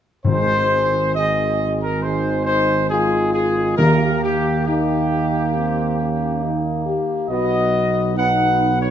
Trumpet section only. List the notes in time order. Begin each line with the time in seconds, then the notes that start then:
0.25 C5
1.15 D#5
1.82 A#4
2.03 C5
2.45 C5
2.89 G#4
3.33 G#4
3.77 A#4
4.23 G4
4.66 G4
7.29 D#5
8.17 F#5
8.81 C#5